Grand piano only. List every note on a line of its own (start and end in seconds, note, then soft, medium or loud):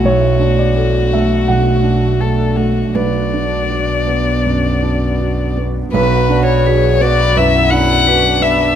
0.04 1.44 B1 soft
0.04 0.55 C#5 medium
0.40 0.98 D4 soft
0.59 1.09 D5 soft
0.77 1.34 A4 soft
1.13 1.70 A3 soft
1.13 1.46 E5 medium
1.48 2.92 B1 soft
1.48 2.92 F#5 medium
1.83 2.42 D4 soft
2.21 2.80 A4 soft
2.57 2.95 A3 soft
2.95 4.42 B1 soft
2.95 5.54 B4 medium
3.33 3.93 D4 soft
3.70 4.31 F#4 soft
4.07 4.68 B3 soft
4.45 5.06 F#2 soft
4.83 5.43 D4 soft
5.19 5.79 F#4 soft
5.57 5.94 B3 soft
5.93 7.33 B1 medium
6.29 6.87 D4 medium
6.66 7.23 F#4 medium
7.01 7.58 B3 soft
7.36 7.93 F#2 medium
7.71 8.28 D4 soft
8.06 8.63 F#4 medium
8.41 8.75 B3 soft